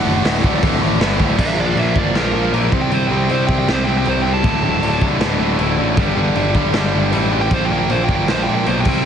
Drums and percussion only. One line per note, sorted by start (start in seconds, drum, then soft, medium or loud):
0.25 snare loud
0.25 open hi-hat medium
0.44 kick loud
0.63 kick loud
0.63 open hi-hat medium
1.01 snare loud
1.01 open hi-hat medium
1.20 kick medium
1.39 kick loud
1.39 crash loud
1.39 crash medium
1.77 crash medium
1.96 kick medium
2.15 snare loud
2.15 crash medium
2.54 crash medium
2.72 kick loud
2.92 crash medium
3.29 crash medium
3.49 kick medium
3.68 snare loud
3.68 crash medium
4.05 crash medium
4.44 kick loud
4.44 crash medium
4.83 crash medium
5.02 kick medium
5.21 snare loud
5.21 crash medium
5.59 crash medium
5.97 kick loud
5.97 crash medium
6.36 crash medium
6.55 kick loud
6.73 snare loud
6.73 crash medium
7.12 crash medium
7.51 kick loud
7.51 crash medium
7.90 crash medium
8.09 kick medium
8.28 snare loud
8.28 crash medium
8.66 crash medium
8.85 kick loud
8.85 crash loud